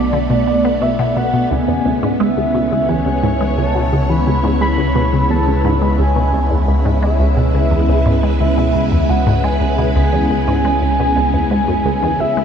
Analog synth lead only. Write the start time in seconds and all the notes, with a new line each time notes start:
Already playing: D5
0.82 E5
1.17 F#5
1.52 G#5
2.20 E5
2.89 G#5
3.58 A5
4.10 B5
4.62 B5
5.30 A5
5.65 B5
6.00 G#5
7.03 E5
8.40 E5
9.10 F#5
9.44 G#5
12.20 E5